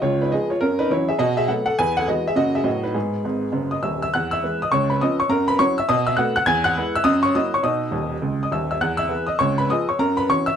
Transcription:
0.02 C#2 F4 C#5
0.21 D#4 B4
0.32 F3 G#3 B3 G#4 D#5
0.50 F4 C#5
0.61 F#2 C#4 A#4
0.79 D#4 B4
0.90 E3 F#3 C#4 E4 C#5
1.09 G#4 E5
1.19 B2 F#4 D#5
1.37 G#4 E5
1.48 F#3 A3 B3 A4 F#5
1.66 A4 F#5
1.79 E2 B4 G#5
1.97 A4 F#5
2.08 E3 G#3 B3 F#4 D#5
2.28 G#4 E5
2.35 F#2 C#3 F#3 A#3 F#4 D#5
2.55 G#4 E5
2.64 A2 F#3 B3 F#4 D#5
2.83 D#4 B4
2.94 G#2 B3 G#4
3.24 G#1 G#2
3.52 F#1 F#2
3.71 D#5 D#6
3.83 D#1 D#2 E5 E6
4.02 E5 E6
4.14 E2 F#5 F#6
4.31 E5 E6
4.43 E3 G#3 B3
4.62 D#5 D#6
4.72 C#2 C#5 C#6
4.90 B4 B5
5.01 F3 B3 C#4 D#5 D#6
5.20 C#5 C#6
5.29 F#2 A#4 A#5
5.48 B4 B5
5.59 F#3 C#4 E4 C#5 C#6
5.78 E5 E6
5.89 B2 D#5 D#6
6.07 E5 E6
6.17 A3 B3 F#4 F#5 F#6
6.36 F#5 F#6
6.46 E2 G#5 G#6
6.64 F#5 F#6
6.77 G#3 B3 E4
6.95 E5 E6
7.04 F#2 D#5 D#6
7.23 C#5 C#6
7.35 F#3 A#3 E4 D#5 D#6
7.54 C#5 C#6
7.63 B2 D#4 D#5 D#6
7.91 D#1 D#2
8.22 C#2
8.43 D#5 D#6
8.52 D#1 D#2 E5 E6
8.71 E5 E6
8.81 E2 F#5 F#6
8.97 E5 E6
9.09 E3 B3 G#4
9.27 D#5 D#6
9.39 C#2 C#5 C#6
9.58 B4 B5
9.70 F3 B3 G#4 D#5 D#6
9.89 C#5 C#6
9.99 F#2 A#4 A#5
10.17 B4 B5
10.29 E3 C#4 F#4 C#5 C#6
10.46 E5 E6

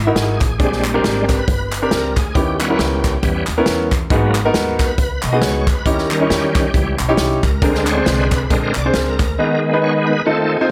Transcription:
Already playing: G#1 E4
0.07 D#4 E4 F#4 A#4
0.15 G#1 G#4, snare, closed hi-hat
0.41 A1, kick, clap, closed hi-hat
0.58 A#1 A#2 G3 G#3 C4 D4 G4 G#4, kick, closed hi-hat
0.72 snare
0.84 clap, closed hi-hat
0.94 C4 D4 G4 A#4
1.04 G#1, snare, closed hi-hat
1.29 B4, kick, snare, clap, closed hi-hat
1.48 G1, kick, closed hi-hat
1.72 B4, clap, closed hi-hat
1.82 C4 D4 G4 A#4
1.91 C#2 A#4, snare, closed hi-hat
2.16 D2 G#4, kick, clap, closed hi-hat
2.35 D#2 D#3 B3 C#4 E4 G4, kick, closed hi-hat
2.59 G3 B3 C#4 E4 F#4, clap, closed hi-hat
2.70 B3 C#4 E4 A#4
2.79 C#2 G4, snare, closed hi-hat
3.04 kick, snare, clap, closed hi-hat
3.23 E2 E3 G3 B3 C#4, kick, closed hi-hat
3.47 D#2, clap, closed hi-hat
3.58 B3 C#4 E4 A#4
3.66 E2, snare, closed hi-hat
3.92 kick, clap, closed hi-hat
4.10 G#1 G#2 F#3 A#3 B3 D#4 F#4 G#4, kick, closed hi-hat
4.35 clap, closed hi-hat
4.45 B3 D#4 F#4 A#4
4.54 D#2, snare, closed hi-hat
4.79 B4, kick, snare, clap, closed hi-hat
4.98 C#2, kick, closed hi-hat
5.23 B1 D#5, clap, closed hi-hat
5.33 B3 D#4 F#4 G#4
5.42 C#2 C#5, snare, closed hi-hat
5.67 D2 B4, kick, clap, closed hi-hat
5.86 D#2 D#3 C#4 D#4 E4 G4 A#4, kick, closed hi-hat
5.98 snare
6.11 D#3 G3 C#4 A#4, clap, closed hi-hat
6.21 C#4 D#4 E4 A#4
6.30 E2 G4, snare, closed hi-hat
6.55 kick, snare, clap, closed hi-hat
6.74 C#2 E3 G3 C#4, kick, closed hi-hat
6.99 B1, clap, closed hi-hat
7.08 C#4 D#4 E4 G4
7.17 C2, snare, closed hi-hat
7.43 C#2 A#4, kick, clap, closed hi-hat
7.62 D2 D3 G#3 C4 D4 G#4 A#4, kick, closed hi-hat
7.74 snare
7.87 C#5, clap, closed hi-hat
7.97 C4 D4 G#4 C5
8.05 C2 B4, snare, closed hi-hat
8.31 B4, kick, clap, closed hi-hat
8.50 A#1 D3 G#3 C4 A#4, kick, closed hi-hat
8.75 C2 D5, clap, closed hi-hat
8.85 C4 D4 G#4 C5
8.94 C#2 A#4, snare, closed hi-hat
9.19 D2, kick, clap, closed hi-hat
9.38 D#3 G#3 B3 D#4 G#4 B4
9.73 B3 D#4 G#4 B4
9.82 C#5
10.07 B4
10.25 D#3 A3 C4 D#4 F4 A4
10.54 G#4
10.61 C4 D#4 F4 C5

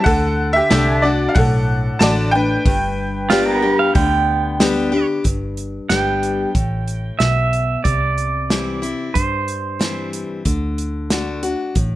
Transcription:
0.04 D2 D3 A4 F#5, kick, open hi-hat
0.53 G4 E5
0.70 C2 D3 A3 D4 A4 D5 G5, snare, open hi-hat
0.98 A5
1.02 D4 F#4 D5
1.29 F5
1.35 B1 A2 A4 F#5, kick, open hi-hat
1.99 A1 D3 A3 D4 F#4 D5 A5, snare, open hi-hat
2.31 D4 B4 G5
2.65 G1 G2, kick, open hi-hat
3.30 G3 A3 B3 D4 F4 G4 D5, snare, open hi-hat
3.34 G5
3.46 A#4
3.57 B3
3.62 D4 G4
3.79 F5
3.95 D2 D3 G5, kick, open hi-hat
4.60 G3 B3 D4 G4, snare, open hi-hat
4.92 D4 G4
5.24 G1 G2, kick, closed hi-hat
5.57 closed hi-hat
5.89 G1 G3 B3 D4 G4 G5, snare, closed hi-hat
6.23 closed hi-hat
6.55 A1 A2, kick, closed hi-hat
6.88 closed hi-hat
7.19 B1 B2 E5, snare, closed hi-hat
7.53 closed hi-hat
7.84 C2 C3 D5, kick, closed hi-hat
8.18 closed hi-hat
8.50 E3 G3 C4 E4, snare, closed hi-hat
8.82 C4 E4, closed hi-hat
9.14 G2 C5, kick, closed hi-hat
9.48 closed hi-hat
9.79 E3 G3 C4 E4, snare, closed hi-hat
10.13 closed hi-hat
10.45 D2 D3, kick, closed hi-hat
10.78 closed hi-hat
11.10 D3 A3 D4 F#4, snare, closed hi-hat
11.43 D4 F#4, closed hi-hat
11.75 A1 A2, kick, closed hi-hat

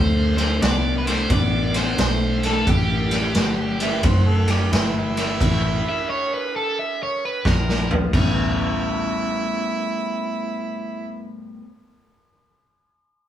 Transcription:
Already playing: D2 D3 A3 C5
0.36 D3 A3 C5, snare, ride
0.60 C2 D3 B3 D5, snare, ride
0.98 B4
1.05 D3 A3 C5, snare, ride
1.30 A1 D3 B3 D5, kick, snare, ride
1.74 D3 B3 C5, snare, ride
1.98 B1 D3 A3 C5, snare, ride
2.43 D3 A3 A4, snare, ride
2.67 A1 A2 E3 G4, kick, ride
3.11 A2 E3, snare, ride
3.35 G1 A2 F#3, snare, ride
3.80 A2 E3 E5, snare, ride
4.03 F#1 A2 F#3 C5, kick, snare, ride
4.27 A4
4.47 A2 F#3, snare, ride
4.51 G4
4.71 G1 A2 E3 E4, snare, ride
4.97 E4
5.15 A2 E3, snare, ride
5.39 A1 A2 E3, kick, crash, ride
5.89 E5
6.10 C#5
6.34 B4
6.56 A4
6.79 E5
7.03 C#5
7.25 B4
7.45 A#1 A#2 F3 A#4, kick, snare, high tom
7.69 snare
7.88 A#2 F3, floor tom
8.11 A1 A2 G3 B3 C#4, kick, crash
8.15 E4

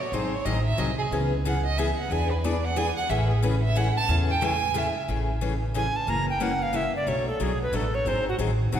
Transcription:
0.00 C#5
0.12 G#1 D#3 F#3 C4 D#4 G#4 C5
0.34 C#5
0.45 A1 D#3 F#3 C4 D#4 G#4 D#5
0.65 E5
0.77 C2 D#3 F#3 C4 D#4 G#4 D#5
0.98 G#4
1.11 C#2 C#3 E3 B3 C#4 G#4
1.45 C#3 E3 B3 C#4 G#4 F#5
1.66 D#5
1.78 C#3 E3 B3 C#4 G#4 E5
1.98 F#5
2.10 E2 E3 B3 D4 G#4 G#5
2.30 B4
2.44 E3 B3 D4 G#4 D5
2.64 F#5
2.76 E3 B3 D4 G#4 G#5
2.97 F#5
3.09 A1 C#3 E3 A3 C#4 G#4 E5
3.29 G#4
3.43 C#3 E3 A3 C#4 G#4 B4
3.64 E5
3.75 C#3 E3 A3 C#4 G#4 F#5
3.97 A5
4.08 E2 C#3 E3 A3 C#4 G#4
4.30 G5
4.41 C#3 E3 A3 C#4 G#4 G#5
4.74 C#3 E3 A3 C#4 G#4 E5
5.08 A1 C#3 E3 A3 C#4 G#4
5.41 C#3 E3 A3 C#4 G#4
5.74 C#3 E3 A3 C#4 G#4 G#5
5.96 A5
6.07 F#1 C#3 E3 A#3 C#4 F#4 A#5
6.30 G5
6.40 C#3 E3 A#3 C#4 F#4 F#5
6.62 F5
6.73 C#3 E3 A#3 C#4 F#4 E5
6.96 D5
7.07 B1 B2 F#3 A3 D4 F#4 C#5
7.27 A4
7.40 B1 B2 F#3 A3 D4 F#4 G#4
7.62 B4
7.72 A1 B2 F#3 A3 D4 F#4 A4
7.95 C#5
8.05 G#1 D#3 F#3 C4 D#4 G#4 C5
8.29 F#4
8.39 A1 D#3 F#3 C4 D#4 G#4
8.72 C2 D#3 F#3 C4 D#4 G#4 F#5

